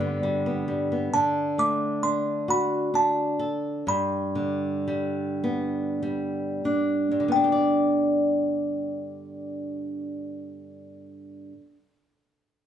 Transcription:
Already playing: G2 D3 G3 B3
0.01 B3
0.23 G3
0.46 B3
0.68 G3
0.92 B3
1.14 D3 A5
1.58 A3 D6
2.03 D4 C6
2.48 F#4 B5
2.94 D4 A5
3.39 A4
3.87 G2 B5
4.35 D3
4.88 G3
5.44 B3
6.03 G3
6.65 D4
7.11 G2
7.20 D3
7.28 B3 G5
7.36 D4
7.44 G4
7.52 D5

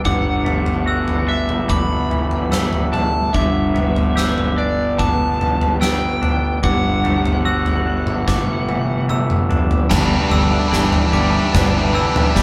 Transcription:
Already playing: G3 D4
0.04 G1 G2 E5 F#5 D6, kick, floor tom
0.45 A3, floor tom
0.66 floor tom
0.86 F#4 E6
1.08 floor tom
1.27 D4 E5
1.49 mid tom
1.68 A3 B5 D6, kick, floor tom
2.10 E3, floor tom
2.31 floor tom
2.51 A3 E6, snare, mid tom
2.73 floor tom
2.92 D4 A5, floor tom, mid tom
3.33 G1 G2 D4 B4 E5 G5 D6, kick, floor tom
3.74 B3, floor tom
3.96 floor tom
4.16 G4 E6, snare
4.38 floor tom
4.57 D4 D5
4.98 B3 A5 D6, kick, floor tom
5.39 G3, floor tom
5.61 floor tom
5.81 B3 G5 E6, snare
6.22 D4, floor tom
6.62 G1 G2 D4 E5 F#5 D6, kick, floor tom
7.04 A3, floor tom
7.26 floor tom
7.45 F#4 E6
7.66 floor tom
7.86 D4
8.07 mid tom
8.27 A3 D6, kick, snare
8.68 E3, high tom
9.09 A3 E6, mid tom
9.30 mid tom
9.50 D4, floor tom
9.71 floor tom
9.89 G1 G2 G3 D4 B4 E5 G5, kick, snare, floor tom, crash
9.98 G3 D4
10.05 G3 D4
10.13 G3 D4
10.21 G3 D4
10.28 G1 D3 G3 D4 E6, floor tom
10.37 G3 D4
10.44 G3 D4
10.52 G3 D4
10.59 G3 D4
10.67 E3 G3 D4
10.72 G1 G3, snare
10.76 D4
10.84 G3 D4
10.91 G3 D4, floor tom
10.99 G3 D4
11.06 G3 D4
11.13 G1 G3 D4 D6
11.21 G3 D4
11.30 G3 D4
11.37 G3 D4
11.45 G3 D4
11.52 G1 G3 B3 D4, kick, snare, floor tom
11.61 G3 D4
11.68 G3 D4
11.76 G3 D4
11.84 G3 D4
11.92 E3 G3 D4 E6
11.99 G3 D4
12.07 G3 D4
12.15 G3 D4, floor tom, mid tom
12.23 G3 D4
12.31 G3 D4
12.35 G1 G3, kick, snare
12.40 D4

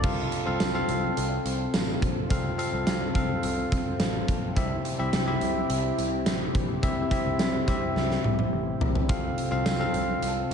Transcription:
0.03 C2 C3 C4 F4 A4 F5, kick, crash
0.32 closed hi-hat
0.45 C2 C4 F4 A4 F5
0.60 C2, snare, closed hi-hat, tambourine
0.74 C4 F4 A4 F5
0.89 C2, closed hi-hat
1.17 C2, closed hi-hat
1.45 C2, closed hi-hat
1.74 A1, snare, closed hi-hat, tambourine
2.02 A#1, kick, closed hi-hat
2.30 C2 C3 C4 F4 A4 F5, kick, closed hi-hat
2.58 C4 F4 A4 F5, closed hi-hat
2.73 C2
2.87 C2, snare, closed hi-hat, tambourine
3.14 C2 C4 F4 A4 F5, kick, closed hi-hat
3.43 C2, closed hi-hat
3.72 C2, kick, closed hi-hat
4.00 A1, snare, closed hi-hat, tambourine
4.28 A#1, kick, closed hi-hat
4.56 C2 C3 C4 E4 G4 E5, kick, closed hi-hat
4.85 closed hi-hat
4.99 C2 C4 E4 G4 E5
5.13 C2, snare, closed hi-hat, tambourine
5.27 C4 E4 G4 E5
5.41 C2, closed hi-hat
5.70 C2, closed hi-hat
5.98 C2, closed hi-hat
6.26 A1, snare, closed hi-hat, tambourine
6.55 A#1, kick, closed hi-hat
6.82 C2 C3 C4 E4 G4 E5, kick, closed hi-hat
7.11 C4 E4 G4 E5, kick, closed hi-hat
7.26 C2
7.39 C2, snare, closed hi-hat, tambourine
7.67 C2 C4 E4 G4 E5, kick, closed hi-hat
7.96 C2, snare
8.10 snare
8.24 C2, high tom
8.39 high tom
8.53 A1
8.81 A#1, floor tom
8.95 floor tom
9.09 C2 C3 C4 F4 A4 F5, kick, closed hi-hat
9.38 closed hi-hat
9.51 C2 C4 F4 A4 F5
9.66 C2, snare, closed hi-hat, tambourine
9.80 C4 F4 A4 F5
9.94 C2, closed hi-hat
10.23 C2, closed hi-hat

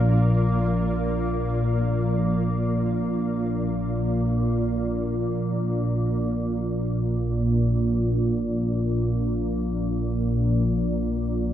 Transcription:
Already playing: A#1 A#2 A#3 F4 A#4 F5
6.19 A#1 A#2

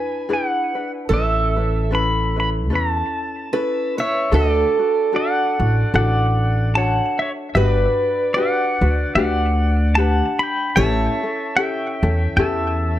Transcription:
Already playing: D4 E4 G#4 B4 G#5
0.29 D4 E4 G#4 B4
0.33 F#5
0.75 D4 E4 B4
1.09 A1 C#4 E4 A4 B4
1.14 E5
1.56 C#4 E4 B4
1.91 C#4 E4 A4 B4
1.95 B5
2.36 C#4 E4 B4 B5
2.70 E2 C#4 E4 A4 B4
2.75 A5
3.53 C#4 E4 A4 B4
3.97 C#4 E4 B4 C#5 E5
4.01 C#5
4.31 D2 D4 F#4 A4 D5
4.36 A4
4.79 D4 F#4
5.12 D4 F#4 A4 F#5
5.18 D5
5.59 A1 D4 F#4
5.94 A1 D4 F#4 A4 F#5
5.98 D5
6.75 D4 F#4 A4 C#5 F#5 A5
7.19 C#5 E5
7.55 G1 D4 F#4 G4 B4 D5
8.34 D4 F#4 G4 B4 F#5
8.38 D5
8.81 D2 D4 F#4 B4
9.15 D2 D4 F#4 G4 B4 D5 F#5
9.95 D4 G4 B4 F#5 A5
10.39 G5 B5
10.76 A1 C#4 E4 G4 A4 C#5 A5
10.80 E5
11.23 C#4 E4 A4
11.57 C#4 E4 G4 A4 G5
12.03 E2 C#4 E4 A4
12.37 E2 C#4 E4 G4 A4 E5 A5

